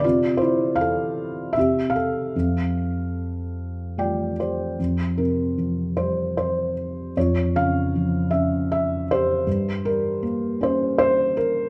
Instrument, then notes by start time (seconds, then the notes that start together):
felt piano
0.00 D5
0.04 C3 F4
0.37 E4 C5
0.76 F5
0.81 A4
1.53 E5
1.57 C3 G4
1.90 F5
1.96 A4
2.36 F2
3.98 G3 A3 F4 D5 G5
4.40 G4 C5 D5
4.79 F2
5.18 C3 A#4
5.58 F3
5.97 G3 C5
6.37 C5
7.17 F2 F4 C#5
7.56 C#3 F5
7.96 F3
8.31 C#4 E5
8.72 E5
9.11 G4 C5
9.47 G2
9.85 G3 A#4
10.23 A#3
10.61 C#4 C5
10.98 C5
11.37 A#4